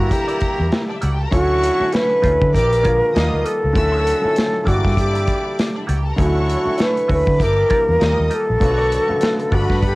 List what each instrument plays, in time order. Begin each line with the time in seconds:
Already playing: grand piano D3 E3 G3 A#3 E4, horn section G3 A#3 E4, flute F#4, string section A#4 A#5
0.11 flute G4, muted clean electric guitar stroke, kick, closed hi-hat
0.28 clean electric guitar A#3 E4 G4 D5, closed hi-hat
0.41 muted clean electric guitar stroke, muted fingered electric bass stroke, kick, closed hi-hat
0.59 fingered electric bass E2, muted clean electric guitar stroke
0.72 snare, closed hi-hat
0.89 string section D4 D5, muted clean electric guitar stroke
0.96 string section E4 E5
1.01 fingered electric bass C#2, clean electric guitar A#3 E4 G4 D5, string section F#4 F#5, closed hi-hat
1.11 string section G4 G5
1.19 string section A4 A5, muted clean electric guitar stroke
1.26 string section A#4 A#5
1.31 fingered electric bass D2, grand piano D3 F#3 A3 C#4 E4, clean electric guitar A3 E4 F#4 C#5, horn section A3 C#4 E4, flute F#4, string section C#5 C#6, kick, closed hi-hat
1.63 closed hi-hat
1.79 grand piano D3 F#3 A3 C#4 E4, clean electric guitar A3 E4 F#4 C#5, muted fingered electric bass stroke
1.92 flute B4, muted clean electric guitar stroke, snare, closed hi-hat
2.10 muted clean electric guitar stroke
2.22 fingered electric bass D2, grand piano D3 F#3 A3 C#4 E4, clean electric guitar A3 E4 F#4 C#5, kick, closed hi-hat
2.40 fingered electric bass D3, muted clean electric guitar stroke, kick
2.53 fingered electric bass A#1, horn section C4 E4 G4, flute A#4, string section D5 D6, muted clean electric guitar stroke, kick, closed hi-hat
2.71 muted clean electric guitar stroke, closed hi-hat
2.83 grand piano D3 F3 G#3 A#3 F4, clean electric guitar A#3 F4 G#4 D5, kick, closed hi-hat
3.01 muted clean electric guitar stroke
3.13 fingered electric bass D#2, horn section D3 A#3 F4, grand piano D#3 F3 G3 A#3 D#5, clean electric guitar A#3 F4 G4 D5, string section D#5 D#6, snare, closed hi-hat
3.32 fingered electric bass D2, muted clean electric guitar stroke
3.45 clean electric guitar A#3 F4 G4 D#5, flute A4, closed hi-hat
3.62 fingered electric bass C#2, muted clean electric guitar stroke
3.73 fingered electric bass D2, grand piano D3 F3 A3 C#4 E4, horn section A3 C#4 F#4, string section E5 E6, muted clean electric guitar stroke, kick, closed hi-hat
3.81 grand piano F#3
3.92 clean electric guitar A3 E4 F#4 C#5
4.07 closed hi-hat
4.22 grand piano D3 F3 A3 C#4 E4, muted clean electric guitar stroke, muted fingered electric bass stroke
4.29 grand piano F#3
4.36 snare, closed hi-hat
4.53 muted clean electric guitar stroke
4.64 fingered electric bass G1, grand piano D3 E3 G3 A#3 E4, horn section G3 D4 E4, clean electric guitar A#3 E4 G4 D5, flute F#4, string section D5 D6, kick, closed hi-hat
4.83 fingered electric bass G2, muted clean electric guitar stroke, kick, snare
4.96 flute G4, muted clean electric guitar stroke, kick, closed hi-hat
5.13 clean electric guitar A#3 E4 G4 D5, closed hi-hat
5.27 muted clean electric guitar stroke, kick, closed hi-hat
5.44 muted clean electric guitar stroke
5.59 snare, closed hi-hat
5.75 string section D4 D5, muted clean electric guitar stroke
5.81 string section E4 E5
5.87 fingered electric bass C#2, clean electric guitar A#3 E4 G4 D5, string section F#4 F#5, closed hi-hat
5.95 string section G4 G5
6.05 string section A4 A5, muted clean electric guitar stroke
6.11 string section A#4 A#5
6.16 fingered electric bass D2, grand piano D3 F#3 A3 C#4 D#4, clean electric guitar A3 E4 F#4 C#5, horn section E4 F#4 A4, flute F#4, string section C#5 C#6, kick, closed hi-hat
6.26 grand piano E4
6.48 muted clean electric guitar stroke, closed hi-hat
6.65 grand piano D3 F#3 A3 C#4 E4, clean electric guitar A3 E4 F#4 C#5, muted fingered electric bass stroke
6.78 flute B4, muted clean electric guitar stroke, snare, closed hi-hat
6.96 muted clean electric guitar stroke, closed hi-hat
7.08 fingered electric bass D2, grand piano D3 F#3 A3 C#4 E4, clean electric guitar A3 E4 F#4 C#5, kick, open hi-hat
7.13 flute B4
7.26 fingered electric bass D3, muted clean electric guitar stroke, kick
7.38 fingered electric bass G1, horn section D4 E4 G4, string section D5 D6, muted clean electric guitar stroke, kick, closed hi-hat
7.43 flute A#4
7.56 muted clean electric guitar stroke
7.69 grand piano E3 G3 A#3 D4 G4, clean electric guitar A#3 E4 G4 D5, muted fingered electric bass stroke, kick, closed hi-hat
7.87 fingered electric bass E2, muted clean electric guitar stroke
7.99 fingered electric bass D#2, grand piano D#3 G3 A#3 D#4 F4, horn section G3 A#3 D#4, clean electric guitar A#3 F4 G4 D5, string section D#5 D#6, snare, closed hi-hat
8.17 fingered electric bass D#2, muted clean electric guitar stroke
8.30 clean electric guitar A#3 F4 G4 D#5, closed hi-hat
8.34 flute A4
8.47 fingered electric bass A#1, muted clean electric guitar stroke
8.60 fingered electric bass B1, grand piano D3 F#3 A3 B3 F4, horn section B3 D4 F#4, string section C#5 C#6, muted clean electric guitar stroke, kick, closed hi-hat
8.70 grand piano F#4
8.78 clean electric guitar B3 F#4 A4 D5
8.92 muted clean electric guitar stroke, closed hi-hat
9.08 grand piano C#3 F#3 A3 B3 F#4, muted clean electric guitar stroke, muted fingered electric bass stroke
9.14 grand piano D3
9.21 snare, closed hi-hat
9.39 muted clean electric guitar stroke, closed hi-hat
9.51 fingered electric bass G1, grand piano D3 G3 A3 B3 F#5, clean electric guitar B3 F#4 A4 D5, horn section D4 B4 F#5, string section B4 B5, kick, open hi-hat
9.55 flute F#4
9.70 fingered electric bass G2, kick, snare
9.82 muted clean electric guitar stroke, kick, closed hi-hat
9.86 flute G4